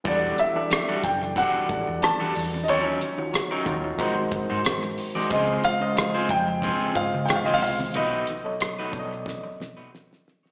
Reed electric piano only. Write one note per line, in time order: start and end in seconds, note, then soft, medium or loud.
0.04 0.39 E3 medium
0.04 0.40 G3 medium
0.04 0.39 E4 medium
0.04 0.40 F#4 medium
0.04 0.40 A4 medium
0.04 0.40 D5 medium
0.55 1.35 E3 medium
0.55 1.35 D4 medium
0.55 1.35 E4 medium
0.55 1.35 G4 medium
0.55 1.35 A4 medium
0.55 1.35 D5 medium
1.68 2.61 E3 medium
1.68 2.62 E4 soft
1.68 2.62 F#4 soft
1.68 2.62 G4 medium
1.68 2.62 A4 medium
1.68 2.62 D5 medium
3.18 3.53 D#3 medium
3.18 3.53 D#4 medium
3.18 3.53 F4 medium
3.18 3.53 F#4 medium
3.18 3.53 C#5 medium
3.66 3.99 D#3 medium
3.66 3.98 D#4 medium
3.66 3.99 F4 medium
3.66 3.98 F#4 medium
3.66 4.00 C#5 medium
3.99 5.05 G#3 medium
3.99 5.05 D#4 medium
3.99 5.05 F#4 medium
3.99 5.06 A#4 medium
3.99 5.06 C5 medium
5.30 5.65 C#3 medium
5.30 5.65 G#3 medium
5.30 5.66 F4 medium
5.30 5.66 C5 medium
5.30 5.66 D#5 medium
5.81 6.61 C#3 medium
5.81 6.61 G#3 medium
5.81 6.61 F4 medium
5.81 6.61 C5 medium
5.81 6.61 D#5 medium
6.95 7.88 C#3 medium
6.95 7.88 G#3 medium
6.95 7.88 F4 medium
6.95 7.89 C5 medium
6.95 7.89 D#5 medium
8.44 8.79 B2 medium
8.44 8.80 F#3 medium
8.44 8.80 A4 medium
8.44 8.80 C#5 medium
8.44 8.80 D#5 medium
8.92 9.85 B2 medium
8.92 9.86 F#3 medium
8.92 9.86 A4 medium
8.92 9.86 C#5 medium
8.92 9.00 D5 medium
8.99 9.89 D#5 medium